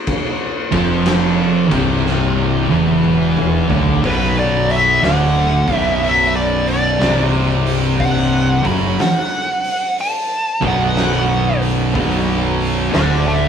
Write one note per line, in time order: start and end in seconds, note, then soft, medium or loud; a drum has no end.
0.07 kick loud
0.07 ride loud
0.72 1.67 F1 medium
0.72 1.69 F2 medium
0.72 1.69 F3 loud
0.72 kick loud
0.72 ride medium
1.06 snare loud
1.06 ride loud
1.71 2.66 C1 loud
1.71 2.68 C2 medium
1.71 2.68 C3 loud
1.71 kick loud
1.71 ride medium
2.06 snare medium
2.70 3.65 E1 loud
2.70 3.67 E2 loud
2.70 3.67 E3 loud
2.70 high tom medium
3.04 mid tom medium
3.37 mid tom medium
3.69 4.01 D1 loud
3.69 4.02 D2 medium
3.69 4.03 D3 loud
3.69 floor tom loud
3.87 floor tom loud
4.04 4.99 B0 loud
4.04 5.02 B1 loud
4.04 5.02 B2 loud
4.04 4.37 B4 medium
4.04 kick loud
4.04 open hi-hat medium
4.39 4.70 D5 medium
4.69 5.02 E5 medium
4.69 open hi-hat medium
5.02 5.63 D1 loud
5.02 5.65 D2 medium
5.02 5.66 D3 loud
5.02 5.75 F#5 medium
5.02 snare loud
5.02 open hi-hat medium
5.68 6.97 B0 medium
5.68 6.99 B1 loud
5.68 7.00 B2 loud
5.68 kick loud
5.68 open hi-hat medium
5.75 6.00 E5 medium
6.02 6.34 E5 medium
6.02 open hi-hat medium
6.36 6.67 D5 medium
6.67 7.21 D5 loud
6.67 open hi-hat medium
7.00 8.60 C1 medium
7.00 8.62 C2 medium
7.00 8.63 C3 loud
7.00 snare loud
7.00 open hi-hat medium
7.66 open hi-hat medium
8.00 8.64 F#5 medium
8.00 kick loud
8.00 open hi-hat medium
8.64 8.96 F#1 loud
8.64 8.97 F#2 medium
8.64 8.97 F#3 loud
8.64 8.98 B5 medium
8.64 kick loud
8.64 snare soft
8.64 open hi-hat medium
8.99 9.96 F#5 medium
8.99 snare loud
8.99 open hi-hat medium
9.64 open hi-hat medium
9.98 10.63 A5 medium
9.98 open hi-hat medium
10.62 11.91 B0 medium
10.62 11.93 B1 medium
10.62 11.94 B2 loud
10.62 kick loud
10.62 open hi-hat medium
10.67 11.61 F#5 medium
10.96 snare loud
10.96 open hi-hat medium
11.62 open hi-hat medium
11.94 12.90 B0 loud
11.94 12.92 B1 loud
11.94 12.93 B2 loud
11.94 kick loud
11.94 open hi-hat medium
12.61 open hi-hat medium
12.93 13.48 D1 medium
12.93 13.48 D2 loud
12.93 13.48 D3 loud
12.93 13.27 D5 medium
12.93 13.26 F#5 medium
12.93 snare loud
12.93 open hi-hat medium
13.27 13.48 E5 medium
13.27 13.48 A5 medium